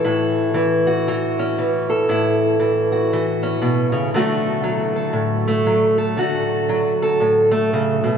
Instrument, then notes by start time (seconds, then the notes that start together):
steel-string acoustic guitar
Already playing: E3 C#4 A4
0.04 A2 E4
0.54 E3
0.87 F#4
1.08 E3
1.39 C#4
1.58 E3
1.90 A4
2.09 A2 E4
2.60 E3
2.92 F#4
3.13 E3
3.43 C#4
3.62 B2
3.92 C#3
4.14 D3 F#3 A3 F#4 A4
4.64 F#3
4.96 A4
5.13 A2
5.48 A3
5.66 F#3
5.98 A4
6.17 D3 F#4
6.69 F#3
7.02 A4
7.20 A2
7.51 A3
7.73 C#3
8.04 B2